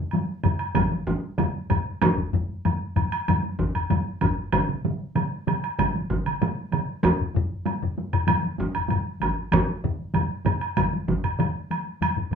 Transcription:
0.11 taiko high, high woodblock
0.28 taiko high
0.44 taiko low-mid, taiko mid, taiko high, high woodblock
0.59 taiko high, high woodblock
0.75 taiko, taiko low-mid, taiko mid, taiko high, high woodblock
0.91 taiko high
1.07 taiko, taiko high
1.23 taiko high
1.38 taiko low-mid, taiko mid, taiko high, high woodblock
1.55 taiko high
1.70 taiko low-mid, taiko mid, taiko high, high woodblock
1.87 taiko high
2.02 taiko, taiko low-mid, taiko high, high woodblock
2.18 taiko low-mid, taiko high
2.33 taiko low-mid, taiko high
2.50 taiko high
2.65 taiko low-mid, taiko high, high woodblock
2.81 taiko high
2.96 taiko low-mid, taiko high, high woodblock
3.12 taiko high, high woodblock
3.28 taiko low-mid, taiko high, high woodblock
3.43 taiko high
3.59 taiko, taiko low-mid, taiko high
3.75 taiko low-mid, taiko high, high woodblock
3.90 taiko low-mid, taiko high, high woodblock
4.07 taiko high
4.21 taiko, taiko low-mid, taiko high, high woodblock
4.37 taiko high
4.52 taiko, taiko mid, taiko high, high woodblock
4.69 taiko mid, taiko high
4.85 taiko mid, taiko high
5.00 taiko high
5.16 taiko mid, taiko high, high woodblock
5.32 taiko high
5.47 taiko mid, taiko high, high woodblock
5.64 taiko high, high woodblock
5.79 taiko, taiko mid, taiko high, high woodblock
5.96 taiko high
6.10 taiko, taiko mid, taiko high
6.26 taiko mid, taiko high, high woodblock
6.42 taiko mid, taiko high, high woodblock
6.57 taiko high
6.72 taiko mid, taiko high, high woodblock
6.88 taiko high
7.03 taiko, taiko low-mid, taiko high, high woodblock
7.19 taiko low-mid, taiko high
7.34 taiko low-mid, taiko high
7.50 taiko high
7.66 taiko high, high woodblock
7.82 taiko low-mid, taiko high
7.98 taiko high
8.13 taiko low-mid, taiko high, high woodblock
8.27 taiko low-mid, taiko high, high woodblock
8.43 taiko high
8.59 taiko, taiko high
8.74 taiko low-mid, taiko high, high woodblock
8.89 taiko low-mid, taiko high, high woodblock
9.05 taiko high
9.20 taiko, taiko high, high woodblock
9.36 taiko high
9.52 taiko, taiko low-mid, taiko mid, taiko high, high woodblock
9.67 taiko high
9.84 taiko low-mid, taiko mid
9.99 taiko high
10.14 taiko low-mid, taiko mid, taiko high, high woodblock
10.29 taiko high
10.45 taiko low-mid, taiko mid, taiko high, high woodblock
10.61 taiko high, high woodblock
10.77 taiko, taiko low-mid, taiko mid, taiko high, high woodblock
10.93 taiko high
11.08 taiko, taiko low-mid, taiko mid, taiko high
11.24 taiko low-mid, taiko mid, taiko high, high woodblock
11.39 taiko low-mid, taiko mid, taiko high, high woodblock
11.55 taiko high
11.71 taiko high, high woodblock
11.87 taiko high
12.01 taiko low-mid, taiko high, high woodblock
12.17 taiko low-mid
12.31 taiko low-mid, taiko high

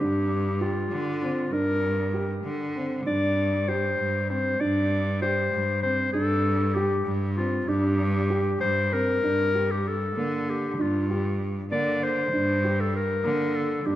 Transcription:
0.00 G2 D4 G4
0.61 F4 G4
0.91 D3
1.21 C4 F4
1.51 G2 D4 A#4
2.14 G4
2.44 D3
2.76 C4
3.06 G2 D4 D5
3.68 G4 C5
3.98 G2
4.30 C4 C5
4.60 G2 D4 D5
5.22 G4 C5
5.53 G2
5.83 C4 C5
6.13 G2 D4 A4
6.75 G4
7.06 G2
7.37 C4 F4
7.67 G2 D4 G4
8.30 G4
8.61 G2 C5
8.92 C4 A#4
9.23 G2 D4
9.55 G4
9.71 G4
9.88 A4
10.16 D3 A#3
10.50 G4
10.78 G2 D4 F4
11.10 G4
11.71 D3 A#3 D5
12.03 C5
12.32 G2 D4
12.65 G4
12.81 A4
12.96 A#4
13.24 D3 A#3
13.56 A4
13.85 G2 D4 G4

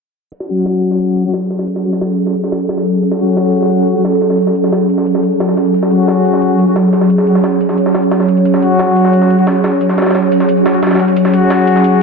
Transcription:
0.32 F#3 C#4 G#4 A4, closed hi-hat, ride
0.40 snare, closed hi-hat
0.49 F#3 C#4 F#4, closed hi-hat, ride
0.66 snare, closed hi-hat
0.83 closed hi-hat, ride
0.91 snare
1.00 closed hi-hat, ride
1.16 closed hi-hat, ride
1.25 F#3 C#4 F#4, ride
1.33 snare, closed hi-hat, ride
1.50 snare, closed hi-hat, ride
1.59 snare
1.67 closed hi-hat, ride
1.76 snare, closed hi-hat
1.84 F#3 C#4 F#4, closed hi-hat, ride
1.93 snare
2.01 snare, closed hi-hat, ride
2.18 closed hi-hat, ride
2.27 snare, closed hi-hat
2.35 closed hi-hat, ride
2.44 snare
2.52 snare, closed hi-hat, ride
2.61 closed hi-hat
2.69 snare, closed hi-hat, ride
2.77 snare
2.86 closed hi-hat, ride
2.95 closed hi-hat
3.03 closed hi-hat, ride
3.11 snare, closed hi-hat
3.20 F#3 C#4 F#4, closed hi-hat, ride
3.37 snare, closed hi-hat, ride
3.54 closed hi-hat, ride
3.62 snare
3.71 closed hi-hat, ride
3.88 closed hi-hat, ride
3.96 F#3 C#4 F#4, ride
4.05 snare, closed hi-hat, ride
4.22 snare, closed hi-hat, ride
4.30 snare
4.39 closed hi-hat, ride
4.47 snare, closed hi-hat
4.55 closed hi-hat, ride
4.64 snare
4.72 snare, closed hi-hat, ride
4.89 closed hi-hat, ride
4.98 snare, closed hi-hat
5.06 closed hi-hat, ride
5.15 snare
5.23 closed hi-hat, ride
5.32 closed hi-hat
5.40 snare, closed hi-hat, ride
5.49 snare
5.57 snare, closed hi-hat, ride
5.66 closed hi-hat
5.74 C#5, closed hi-hat, ride
5.83 snare, closed hi-hat
5.91 F#3 C#4 F#4, closed hi-hat, ride
6.08 snare, closed hi-hat, ride
6.25 closed hi-hat, ride
6.33 snare
6.42 closed hi-hat, ride
6.59 closed hi-hat, ride
6.67 F#3 C#4 F#4, ride
6.76 snare, closed hi-hat, ride
6.93 snare, closed hi-hat, ride
7.01 snare
7.10 closed hi-hat, ride
7.18 snare, closed hi-hat
7.27 F#3 C#4 F#4, closed hi-hat, ride
7.35 snare
7.44 snare, closed hi-hat, ride
7.61 closed hi-hat, ride
7.69 snare, closed hi-hat
7.78 closed hi-hat, ride
7.86 snare
7.94 snare, closed hi-hat, ride
8.03 closed hi-hat
8.11 snare, closed hi-hat, ride
8.20 snare
8.28 closed hi-hat, ride
8.37 closed hi-hat
8.45 closed hi-hat, ride
8.54 snare, closed hi-hat
8.62 F#3 C#4 F#4, closed hi-hat, ride
8.79 snare, closed hi-hat, ride
8.96 closed hi-hat, ride
9.05 snare
9.13 closed hi-hat, ride
9.22 snare
9.30 closed hi-hat, ride
9.39 F#3 C#4 F#4, ride
9.47 snare, closed hi-hat, ride
9.64 snare, closed hi-hat, ride
9.81 closed hi-hat, ride
9.89 snare, closed hi-hat
9.98 F#3 C#4 F#4, snare, closed hi-hat, ride
10.02 snare, ride
10.06 snare, ride
10.11 snare, ride
10.15 snare, closed hi-hat, ride
10.32 closed hi-hat, ride
10.40 snare, closed hi-hat
10.49 closed hi-hat, ride, swell
10.57 ride
10.66 snare, closed hi-hat, ride
10.74 F#3 C#4 F#4, closed hi-hat
10.83 snare, closed hi-hat, ride
10.87 snare, ride
10.91 F#3 C#4 F#4, snare, ride
10.95 snare, ride
11.00 F#3 C#4 F#4, snare, closed hi-hat, ride
11.08 closed hi-hat
11.16 A4, closed hi-hat, ride
11.25 snare, closed hi-hat
11.33 F#3 C#4 F#4, closed hi-hat, ride
11.50 snare, closed hi-hat, ride
11.67 closed hi-hat, ride
11.76 snare
11.84 closed hi-hat, ride

